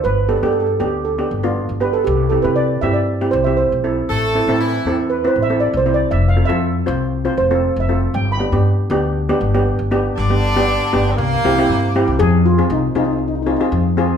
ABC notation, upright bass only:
X:1
M:4/4
L:1/16
Q:1/4=118
K:C
V:1 name="Upright bass" clef=bass
G,,,3 G,,3 D,,4 G,,,3 G,,,3 | C,,3 C,3 G,,4 C,,3 B,,,3 | A,,,3 A,,3 E,,4 A,,,3 C,,3 | F,,,3 F,,3 C,,4 F,,,3 F,,,3 |
G,,,3 G,,3 D,,4 G,,,3 G,,,3 | G,,,6 G,,,2 C,,2 C,,2 G,,3 C,, | [K:Fphr] F,,4 C,,2 C,,6 F,,4 |]